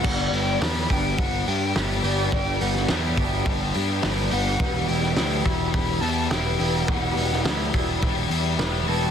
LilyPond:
<<
  \new Staff \with { instrumentName = "Flute" } { \time 4/4 \key g \major \tempo 4 = 105 fis''8 g''8 b''8 g''8 fis''8 g''8 e''8 d''8 | g''8 fis''8 e''4. r4 fis''8~ | fis''8 g''8 g''8 b''8 b''8 a''8 g''4 | fis''4. r2 a''8 | }
  \new Staff \with { instrumentName = "Twelve-string acoustic guitar" } { \time 4/4 \key g \major d''8 b'8 e'8 fis'8 g'8 g'8 b'8 g'8 | d''8 b'8 e'8 fis'8 g'8 g'8 b'8 g'8 | b'8 g'8 e'8 fis'8 g'8 g'8 b'8 g'8 | b'8 g'8 e'8 fis'8 g'8 g'8 b'8 g'8 | }
  \new Staff \with { instrumentName = "Clean electric guitar" } { \time 4/4 \key g \major <g, d g b d' g'>8 <g b d' g'>8 <g b d' g'>8 <g b d' g'>4. <g b d' g'>8 <g b d' g'>8 | <g, d g b d' g'>8 <g b d' g'>8 <g b d' g'>8 <g b d' g'>4. <g b d' g'>8 <g b d' g'>8 | <e, b, g b e'>8 <g b e'>8 <g b e'>8 <g b e'>4. <g b e'>8 <g b e'>8 | <e, b, g b e'>8 <g b e'>8 <g b e'>8 <g b e'>4. <g b e'>8 <g b e' fis'>8 | }
  \new Staff \with { instrumentName = "Overdriven electric guitar" } { \time 4/4 \key g \major <g, d g b d' g'>4 <g b d' g'>4 <g b d' g'>8 <g b d' g'>8 <g b d' g'>8 <g b d' g'>8 | <g, d g b d' g'>4 <g b d' g'>4 <g b d' g'>8 <g b d' g'>8 <g b d' g'>8 <g b d' g'>8 | <e, b, e g e' g'>4 <e g e' g'>4 <e g e' g'>8 <e g e' g'>8 <e g e' g'>8 <e g e' g'>8 | <e, b, e g e' g'>4 <e g e' g'>4 <e g e' g'>8 <e g e' g'>8 <e g e' g'>8 <e g e' g'>8 | }
  \new Staff \with { instrumentName = "Picked electric bass" } { \clef bass \time 4/4 \key g \major g,,8 g,,8 e,8 g,,8 g,,8 g,8 g,,8 g,,8 | r8 g,,8 e,8 g,,8 g,,8 g,8 g,,8 g,,8 | e,,8 e,,8 d,8 e,,8 e,,8 e,8 e,,8 e,,8 | r8 e,,8 d,8 e,,8 e,,8 e,8 e,,8 e,,8 | }
  \new DrumStaff \with { instrumentName = "Drums" } \drummode { \time 4/4 <cymc bd>8 hho8 <hho sn>16 sn16 <hho bd>8 <hho bd>8 hho8 sn8 hho8 | bd8 hho16 sn16 <hho sn>8 <hho bd>8 <hho bd>8 hho8 <hho sn>8 hho8 | <hho bd>8 hho16 sn16 <hho sn>8 <hho bd>8 <hho bd>8 hho8 <hho sn>8 hho8 | <hho bd>8 hho16 sn16 <hho sn>8 <hho bd>8 <hho bd>8 hho8 <hho sn>8 hho8 | }
>>